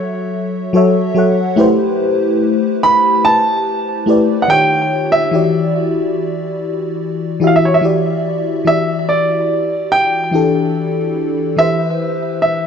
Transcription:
Already playing: fm electric piano F#3 F#4 A4 C#5 E5, grand piano C#5
0.73 fm electric piano F#3 F#4 A4 C#5 E5
1.15 fm electric piano F#3 F#4 A4 C#5 F#5
1.56 fm electric piano A3 E4 G4 B4 C5
2.83 grand piano B5
3.25 grand piano A5
4.06 fm electric piano A3 E4 G4 B4
4.10 fm electric piano D5
4.42 grand piano F#5
4.48 fm electric piano D#3 D#4 F4 G4 C#5, grand piano G5
5.12 grand piano E5
5.31 fm electric piano E3 E4 F#4 G4
5.35 fm electric piano D5
7.40 fm electric piano E3 E4 F#4 G4
7.44 fm electric piano E5, grand piano F5
7.56 grand piano E5
7.65 grand piano C#5
7.74 grand piano E5
7.81 fm electric piano E3 E4 F#4 G4 D5
8.65 fm electric piano E3 E4 F#4 G4 D5, grand piano E5
9.09 grand piano D5
9.92 grand piano G5
10.31 fm electric piano E3 D4 E4 G4
10.35 fm electric piano A4
11.56 fm electric piano E3 E4 G4 B4 C5, grand piano E5
12.42 grand piano E5

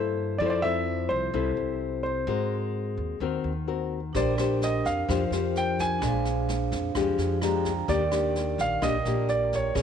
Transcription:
Already playing: upright bass G2, nylon-string guitar G2 A#3 E4 A4, grand piano C5
0.38 upright bass F2, nylon-string guitar F3 C4 E4 A4, grand piano D5
0.46 grand piano C5
0.50 grand piano D5
0.62 nylon-string guitar C4 E4 A4, grand piano E5
1.09 upright bass C2, grand piano C5
1.34 upright bass C2, nylon-string guitar C3 C4 E4 A4
1.57 upright bass C2
2.03 grand piano C5
2.27 upright bass G#2, nylon-string guitar G#3 C4 F#4 A#4
2.97 upright bass D#2
3.20 upright bass D#2, nylon-string guitar D#3 C4 F#4 A#4
3.44 upright bass D#2
3.68 nylon-string guitar C4 F#4 A#4
4.13 upright bass A#1, nylon-string guitar A#3 D4 G4 C5, vibraphone D4 A#4 C5, grand piano D5, kick, snare
4.18 vibraphone G5
4.38 nylon-string guitar D4 G4 C5, cross-stick, snare
4.62 grand piano D#5, snare
4.85 upright bass F2, grand piano F5, kick, snare
5.08 upright bass F2, nylon-string guitar F3 D4 G4 C5, kick, cross-stick, snare
5.31 upright bass F2, nylon-string guitar D4 G4 C5, snare
5.55 grand piano G5, snare
5.79 grand piano G#5, kick, snare
5.99 upright bass A#1, nylon-string guitar A#2 G#3 D4, vibraphone D4 C5, kick, cross-stick, snare
6.05 vibraphone F5
6.25 snare
6.49 snare
6.72 upright bass F2, kick, snare
6.95 upright bass F2, nylon-string guitar F3 G#3 D4 G4, kick, cross-stick, snare
7.18 upright bass F2, snare
7.42 nylon-string guitar G#3 D4 G4, vibraphone A#5, cross-stick, snare
7.55 vibraphone G5
7.65 kick, snare
7.88 upright bass D#2, nylon-string guitar D#3 A#3 D4 G4, vibraphone A#4 D5, grand piano D5, kick, snare
7.93 vibraphone G5
8.11 nylon-string guitar A#3 D4 G4, cross-stick, snare
8.35 snare
8.58 upright bass A#1, grand piano F5, kick, snare
8.82 upright bass A#1, nylon-string guitar A#2 A#3 D4 G4, grand piano D#5, kick, cross-stick, snare
9.05 upright bass A#1, nylon-string guitar A#3 D4 G4, vibraphone A#4 D5 G5, snare
9.28 grand piano D5, snare
9.52 grand piano C#5, kick, snare
9.74 upright bass A#1, nylon-string guitar A#3 C#4 G#4, vibraphone C#4 A#4, kick, cross-stick, snare
9.79 vibraphone C6

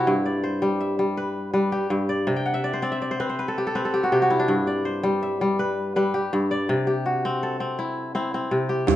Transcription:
Already playing: kora C3 C4 E4 F#4 G4 A4 C5
0.07 kora G2
0.26 kora D5
0.44 kora C5
0.62 kora G3
0.80 kora E5
0.99 kora G3
1.17 kora B4
1.53 kora G3 B4
1.72 kora G4
1.90 kora G2
2.09 kora D5
2.27 kora C3
2.36 kora G5
2.45 kora F#5
2.54 kora E5
2.64 kora D5
2.73 kora C5
2.82 kora C4 D5
2.92 kora E5
3.02 kora D5
3.11 kora C5
3.20 kora C4 B4
3.29 kora C5
3.39 kora B4
3.48 kora A4
3.58 kora G4
3.67 kora A4
3.75 kora C4 B4
3.85 kora A4
3.94 kora G4
4.03 kora F#4
4.12 kora C3 G4
4.22 kora F#4
4.30 kora E4
4.39 kora D4
4.48 kora G2
4.67 kora D5
4.85 kora C5
5.03 kora G3
5.23 kora E5
5.41 kora G3
5.59 kora B4
5.96 kora G3 B4
6.14 kora G4
6.33 kora G2
6.51 kora D5
6.69 kora C3
6.87 kora G4
7.06 kora F#4
7.25 kora C4
7.43 kora A4
7.60 kora C4
7.79 kora E4
8.15 kora C4 E4
8.34 kora C4
8.51 kora C3
8.69 kora G4
8.87 kora G2, djembe slap, djembe bass

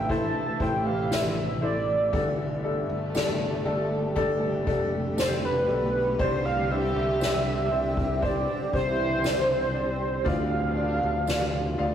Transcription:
Already playing: fingered electric bass A1, upright piano A2 E3 E4 A4 C5, ambient pad C3 E3 A3 E5, soft synth lead G5
0.09 upright piano E4 A4 C5, soft synth lead A5, kick, ride
0.35 ride
0.60 fingered electric bass A1, french horn section G3 G4, upright piano E4 A4 C5, soft synth lead G5, kick, ride
0.86 soft synth lead F5
1.11 upright piano E4 A4 C5, soft synth lead E5, snare, tambourine
1.61 upright piano E4 A4 C5, soft synth lead D5, ride
2.12 fingered electric bass G1, upright piano G2 D3 D4 G4 A4, ambient pad D3 G3 A3 G4, french horn section A3 A4, kick, ride
2.63 upright piano D4 G4 A4, ride
2.89 fingered electric bass G1
3.14 upright piano D4 G4 A4, snare, ride, tambourine
3.65 fingered electric bass G1, upright piano D4 G4 A4, ride
4.16 upright piano D4 G4 A4, kick, ride
4.42 ride
4.66 fingered electric bass F1, upright piano D4 G4 A4, kick, ride
5.17 upright piano D4 G4 A4, soft synth lead C5, snare, ride, tambourine
5.45 soft synth lead B4
5.68 fingered electric bass B1, upright piano D4 G4 A4, soft synth lead B4, ride
6.19 fingered electric bass C2, upright piano G2 D4 G4 C5, french horn section G3 G4, ambient pad C4, soft synth lead C5, kick, ride
6.45 soft synth lead F5
6.70 upright piano D4 G4 C5, soft synth lead E5, ride
6.96 fingered electric bass C2
7.20 upright piano D4 G4 C5, snare, ride, tambourine
7.70 fingered electric bass C2, upright piano D4 G4 C5, ride
7.97 kick
8.21 upright piano D4 G4 C5, soft synth lead D5, kick, ride
8.49 ride
8.72 fingered electric bass C2, french horn section E3 E4, upright piano D4 G4 C5, soft synth lead C5, kick, ride
9.23 upright piano D4 G4 C5, snare, ride, tambourine
9.74 upright piano D4 G4 C5, ride
10.24 fingered electric bass D2, upright piano A2 D4 F4 D5, french horn section D3 D4, ambient pad F3 A3 F4, soft synth lead F5, kick, ride
10.75 upright piano D4 F4 D5, ride
11.03 fingered electric bass D2
11.27 upright piano D4 F4 D5, snare, ride, tambourine
11.78 fingered electric bass D2, upright piano D4 F4 F5, ride

